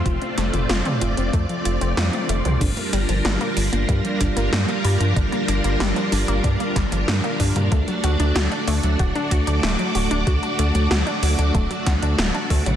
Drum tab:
CC |----------------|x---------------|----------------|----------------|
HH |xxxxxxxxxxxxxxxx|xxxxxxoxxxxxxxox|xxxxxxoxxxxxxxox|xxxxxxoxxxxxxxox|
SD |--o-o-------o---|----o-------o---|----o-----o-o---|----o-------o---|
T1 |------------oo--|----------------|----------------|----------------|
T2 |---o-o---------o|----------------|---------------o|----------------|
BD |o-------o-------|o-------o-o-----|o-------o-o---o-|o-------o-o-----|

CC |----------------|
HH |xxxxxxoxxxxxxxox|
SD |----o-----o-o---|
T1 |----------------|
T2 |---------------o|
BD |o-------o-o---o-|